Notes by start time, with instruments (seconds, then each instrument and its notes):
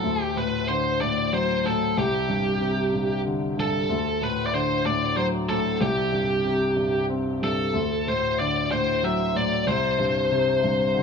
Already playing: lead electric guitar A4
0.04 grand piano D2
0.23 lead electric guitar G4
0.36 grand piano A2, lead electric guitar B4
0.68 grand piano D3, lead electric guitar C5
1.01 grand piano A2, lead electric guitar D5
1.32 grand piano F#3, lead electric guitar C5
1.65 grand piano A2, lead electric guitar A4
1.97 grand piano C2, lead electric guitar G4
2.28 grand piano G2
2.60 grand piano C3
2.93 grand piano G2
3.25 grand piano D3
3.57 grand piano G2, lead electric guitar A4
3.89 grand piano D2
4.21 grand piano A2, lead electric guitar B4
4.47 lead electric guitar D5
4.53 grand piano D3, lead electric guitar C5
4.85 grand piano A2, lead electric guitar D5
5.16 grand piano F#3, lead electric guitar C5
5.49 grand piano A2, lead electric guitar A4
5.81 grand piano C2, lead electric guitar G4
6.12 grand piano G2
6.45 grand piano C3
6.77 grand piano G2
7.09 grand piano C4
7.42 grand piano G2, lead electric guitar A4
7.74 grand piano D2
8.07 grand piano A2, lead electric guitar C5
8.39 grand piano D3, lead electric guitar D5
8.71 grand piano A2, lead electric guitar C5
9.03 grand piano F#3, lead electric guitar E5
9.35 grand piano A2, lead electric guitar D5
9.67 grand piano C2, lead electric guitar C5
9.98 grand piano G2
10.31 grand piano C3
10.63 grand piano G2
10.95 grand piano D3